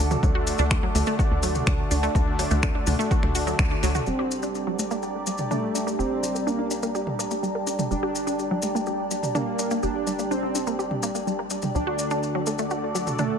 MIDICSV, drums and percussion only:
0, 0, Header, 1, 2, 480
1, 0, Start_track
1, 0, Key_signature, -2, "minor"
1, 0, Tempo, 480000
1, 230, Time_signature, 4, 2, 24, 8
1, 13385, End_track
2, 0, Start_track
2, 0, Title_t, "Drums"
2, 109, Note_on_c, 9, 70, 45
2, 110, Note_on_c, 9, 45, 80
2, 209, Note_off_c, 9, 70, 0
2, 210, Note_off_c, 9, 45, 0
2, 230, Note_on_c, 9, 36, 111
2, 233, Note_on_c, 9, 70, 39
2, 330, Note_off_c, 9, 36, 0
2, 333, Note_off_c, 9, 70, 0
2, 470, Note_on_c, 9, 46, 102
2, 470, Note_on_c, 9, 70, 87
2, 570, Note_off_c, 9, 46, 0
2, 570, Note_off_c, 9, 70, 0
2, 582, Note_on_c, 9, 70, 44
2, 682, Note_off_c, 9, 70, 0
2, 704, Note_on_c, 9, 70, 40
2, 709, Note_on_c, 9, 26, 119
2, 710, Note_on_c, 9, 36, 111
2, 804, Note_off_c, 9, 70, 0
2, 809, Note_off_c, 9, 26, 0
2, 810, Note_off_c, 9, 36, 0
2, 950, Note_on_c, 9, 46, 99
2, 957, Note_on_c, 9, 70, 91
2, 1050, Note_off_c, 9, 46, 0
2, 1057, Note_off_c, 9, 70, 0
2, 1064, Note_on_c, 9, 70, 47
2, 1164, Note_off_c, 9, 70, 0
2, 1190, Note_on_c, 9, 36, 111
2, 1193, Note_on_c, 9, 70, 39
2, 1290, Note_off_c, 9, 36, 0
2, 1293, Note_off_c, 9, 70, 0
2, 1428, Note_on_c, 9, 70, 78
2, 1430, Note_on_c, 9, 46, 101
2, 1528, Note_off_c, 9, 70, 0
2, 1530, Note_off_c, 9, 46, 0
2, 1549, Note_on_c, 9, 70, 45
2, 1550, Note_on_c, 9, 45, 84
2, 1649, Note_off_c, 9, 70, 0
2, 1650, Note_off_c, 9, 45, 0
2, 1666, Note_on_c, 9, 70, 39
2, 1670, Note_on_c, 9, 26, 116
2, 1670, Note_on_c, 9, 36, 112
2, 1670, Note_on_c, 9, 45, 86
2, 1766, Note_off_c, 9, 70, 0
2, 1770, Note_off_c, 9, 26, 0
2, 1770, Note_off_c, 9, 36, 0
2, 1770, Note_off_c, 9, 45, 0
2, 1910, Note_on_c, 9, 46, 100
2, 1912, Note_on_c, 9, 70, 85
2, 2010, Note_off_c, 9, 46, 0
2, 2012, Note_off_c, 9, 70, 0
2, 2033, Note_on_c, 9, 70, 44
2, 2133, Note_off_c, 9, 70, 0
2, 2150, Note_on_c, 9, 36, 109
2, 2152, Note_on_c, 9, 70, 40
2, 2250, Note_off_c, 9, 36, 0
2, 2252, Note_off_c, 9, 70, 0
2, 2390, Note_on_c, 9, 46, 102
2, 2394, Note_on_c, 9, 70, 82
2, 2490, Note_off_c, 9, 46, 0
2, 2494, Note_off_c, 9, 70, 0
2, 2507, Note_on_c, 9, 70, 53
2, 2607, Note_off_c, 9, 70, 0
2, 2626, Note_on_c, 9, 70, 35
2, 2630, Note_on_c, 9, 26, 117
2, 2630, Note_on_c, 9, 36, 115
2, 2726, Note_off_c, 9, 70, 0
2, 2730, Note_off_c, 9, 26, 0
2, 2730, Note_off_c, 9, 36, 0
2, 2866, Note_on_c, 9, 70, 95
2, 2870, Note_on_c, 9, 45, 86
2, 2870, Note_on_c, 9, 46, 101
2, 2966, Note_off_c, 9, 70, 0
2, 2970, Note_off_c, 9, 45, 0
2, 2970, Note_off_c, 9, 46, 0
2, 3001, Note_on_c, 9, 70, 54
2, 3101, Note_off_c, 9, 70, 0
2, 3110, Note_on_c, 9, 36, 115
2, 3110, Note_on_c, 9, 70, 40
2, 3210, Note_off_c, 9, 36, 0
2, 3210, Note_off_c, 9, 70, 0
2, 3230, Note_on_c, 9, 26, 38
2, 3230, Note_on_c, 9, 45, 85
2, 3330, Note_off_c, 9, 26, 0
2, 3330, Note_off_c, 9, 45, 0
2, 3350, Note_on_c, 9, 46, 98
2, 3351, Note_on_c, 9, 70, 88
2, 3450, Note_off_c, 9, 46, 0
2, 3451, Note_off_c, 9, 70, 0
2, 3473, Note_on_c, 9, 70, 50
2, 3573, Note_off_c, 9, 70, 0
2, 3590, Note_on_c, 9, 26, 120
2, 3590, Note_on_c, 9, 36, 113
2, 3591, Note_on_c, 9, 70, 35
2, 3690, Note_off_c, 9, 26, 0
2, 3690, Note_off_c, 9, 36, 0
2, 3691, Note_off_c, 9, 70, 0
2, 3830, Note_on_c, 9, 46, 102
2, 3835, Note_on_c, 9, 70, 92
2, 3930, Note_off_c, 9, 46, 0
2, 3935, Note_off_c, 9, 70, 0
2, 3948, Note_on_c, 9, 70, 51
2, 3951, Note_on_c, 9, 45, 81
2, 4048, Note_off_c, 9, 70, 0
2, 4051, Note_off_c, 9, 45, 0
2, 4063, Note_on_c, 9, 70, 38
2, 4163, Note_off_c, 9, 70, 0
2, 4312, Note_on_c, 9, 70, 79
2, 4412, Note_off_c, 9, 70, 0
2, 4426, Note_on_c, 9, 70, 50
2, 4526, Note_off_c, 9, 70, 0
2, 4549, Note_on_c, 9, 70, 38
2, 4649, Note_off_c, 9, 70, 0
2, 4790, Note_on_c, 9, 70, 92
2, 4890, Note_off_c, 9, 70, 0
2, 4910, Note_on_c, 9, 70, 47
2, 5010, Note_off_c, 9, 70, 0
2, 5025, Note_on_c, 9, 70, 32
2, 5125, Note_off_c, 9, 70, 0
2, 5266, Note_on_c, 9, 70, 85
2, 5366, Note_off_c, 9, 70, 0
2, 5378, Note_on_c, 9, 70, 45
2, 5390, Note_on_c, 9, 45, 73
2, 5478, Note_off_c, 9, 70, 0
2, 5490, Note_off_c, 9, 45, 0
2, 5509, Note_on_c, 9, 45, 74
2, 5511, Note_on_c, 9, 70, 36
2, 5609, Note_off_c, 9, 45, 0
2, 5611, Note_off_c, 9, 70, 0
2, 5753, Note_on_c, 9, 70, 90
2, 5853, Note_off_c, 9, 70, 0
2, 5876, Note_on_c, 9, 70, 49
2, 5976, Note_off_c, 9, 70, 0
2, 5999, Note_on_c, 9, 70, 38
2, 6099, Note_off_c, 9, 70, 0
2, 6234, Note_on_c, 9, 70, 85
2, 6334, Note_off_c, 9, 70, 0
2, 6356, Note_on_c, 9, 70, 53
2, 6456, Note_off_c, 9, 70, 0
2, 6477, Note_on_c, 9, 70, 36
2, 6577, Note_off_c, 9, 70, 0
2, 6707, Note_on_c, 9, 70, 84
2, 6807, Note_off_c, 9, 70, 0
2, 6826, Note_on_c, 9, 70, 50
2, 6926, Note_off_c, 9, 70, 0
2, 6951, Note_on_c, 9, 70, 35
2, 7051, Note_off_c, 9, 70, 0
2, 7070, Note_on_c, 9, 45, 71
2, 7170, Note_off_c, 9, 45, 0
2, 7197, Note_on_c, 9, 70, 90
2, 7297, Note_off_c, 9, 70, 0
2, 7308, Note_on_c, 9, 70, 52
2, 7408, Note_off_c, 9, 70, 0
2, 7435, Note_on_c, 9, 70, 39
2, 7535, Note_off_c, 9, 70, 0
2, 7668, Note_on_c, 9, 70, 86
2, 7768, Note_off_c, 9, 70, 0
2, 7790, Note_on_c, 9, 45, 70
2, 7790, Note_on_c, 9, 70, 52
2, 7890, Note_off_c, 9, 45, 0
2, 7890, Note_off_c, 9, 70, 0
2, 7912, Note_on_c, 9, 70, 36
2, 8012, Note_off_c, 9, 70, 0
2, 8154, Note_on_c, 9, 70, 82
2, 8254, Note_off_c, 9, 70, 0
2, 8273, Note_on_c, 9, 70, 47
2, 8373, Note_off_c, 9, 70, 0
2, 8391, Note_on_c, 9, 70, 38
2, 8491, Note_off_c, 9, 70, 0
2, 8622, Note_on_c, 9, 70, 85
2, 8722, Note_off_c, 9, 70, 0
2, 8759, Note_on_c, 9, 70, 45
2, 8859, Note_off_c, 9, 70, 0
2, 8863, Note_on_c, 9, 70, 40
2, 8963, Note_off_c, 9, 70, 0
2, 9109, Note_on_c, 9, 70, 85
2, 9209, Note_off_c, 9, 70, 0
2, 9230, Note_on_c, 9, 45, 70
2, 9234, Note_on_c, 9, 70, 53
2, 9330, Note_off_c, 9, 45, 0
2, 9334, Note_off_c, 9, 70, 0
2, 9350, Note_on_c, 9, 45, 73
2, 9353, Note_on_c, 9, 70, 37
2, 9450, Note_off_c, 9, 45, 0
2, 9453, Note_off_c, 9, 70, 0
2, 9588, Note_on_c, 9, 70, 88
2, 9688, Note_off_c, 9, 70, 0
2, 9708, Note_on_c, 9, 70, 50
2, 9808, Note_off_c, 9, 70, 0
2, 9828, Note_on_c, 9, 70, 35
2, 9928, Note_off_c, 9, 70, 0
2, 10070, Note_on_c, 9, 70, 81
2, 10170, Note_off_c, 9, 70, 0
2, 10191, Note_on_c, 9, 70, 54
2, 10291, Note_off_c, 9, 70, 0
2, 10314, Note_on_c, 9, 70, 40
2, 10414, Note_off_c, 9, 70, 0
2, 10551, Note_on_c, 9, 70, 89
2, 10651, Note_off_c, 9, 70, 0
2, 10669, Note_on_c, 9, 70, 51
2, 10769, Note_off_c, 9, 70, 0
2, 10795, Note_on_c, 9, 70, 39
2, 10895, Note_off_c, 9, 70, 0
2, 10910, Note_on_c, 9, 45, 71
2, 11010, Note_off_c, 9, 45, 0
2, 11026, Note_on_c, 9, 70, 83
2, 11126, Note_off_c, 9, 70, 0
2, 11151, Note_on_c, 9, 70, 53
2, 11251, Note_off_c, 9, 70, 0
2, 11275, Note_on_c, 9, 70, 41
2, 11375, Note_off_c, 9, 70, 0
2, 11502, Note_on_c, 9, 70, 81
2, 11602, Note_off_c, 9, 70, 0
2, 11620, Note_on_c, 9, 70, 52
2, 11630, Note_on_c, 9, 45, 71
2, 11720, Note_off_c, 9, 70, 0
2, 11730, Note_off_c, 9, 45, 0
2, 11753, Note_on_c, 9, 70, 36
2, 11853, Note_off_c, 9, 70, 0
2, 11987, Note_on_c, 9, 70, 82
2, 12087, Note_off_c, 9, 70, 0
2, 12106, Note_on_c, 9, 70, 46
2, 12206, Note_off_c, 9, 70, 0
2, 12231, Note_on_c, 9, 70, 39
2, 12331, Note_off_c, 9, 70, 0
2, 12464, Note_on_c, 9, 70, 80
2, 12564, Note_off_c, 9, 70, 0
2, 12584, Note_on_c, 9, 70, 46
2, 12684, Note_off_c, 9, 70, 0
2, 12704, Note_on_c, 9, 70, 37
2, 12804, Note_off_c, 9, 70, 0
2, 12953, Note_on_c, 9, 70, 80
2, 13053, Note_off_c, 9, 70, 0
2, 13070, Note_on_c, 9, 45, 74
2, 13071, Note_on_c, 9, 70, 48
2, 13170, Note_off_c, 9, 45, 0
2, 13171, Note_off_c, 9, 70, 0
2, 13185, Note_on_c, 9, 70, 34
2, 13189, Note_on_c, 9, 45, 74
2, 13285, Note_off_c, 9, 70, 0
2, 13289, Note_off_c, 9, 45, 0
2, 13385, End_track
0, 0, End_of_file